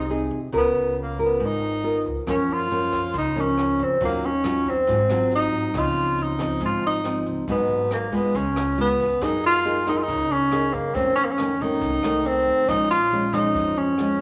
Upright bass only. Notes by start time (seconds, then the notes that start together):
Already playing: C2
0.31 F2
0.53 C#2
0.75 C#2
1.40 G#1
2.06 C#2
2.27 F#2
2.49 F#2
3.14 C#2
3.79 F#2
4.01 D#2
4.22 D#2
4.87 G#1
5.52 G#1
5.74 C#2
5.95 C#2
6.61 G#1
7.26 C#2
7.48 G#1
7.69 G#1
8.35 C#2
9.00 C#2
9.22 F#2
10.09 C#2
10.29 C#2
10.73 F#2
10.95 F2
11.81 C2
12.04 C2
12.47 F2
12.68 A#1
13.55 F2
13.77 F2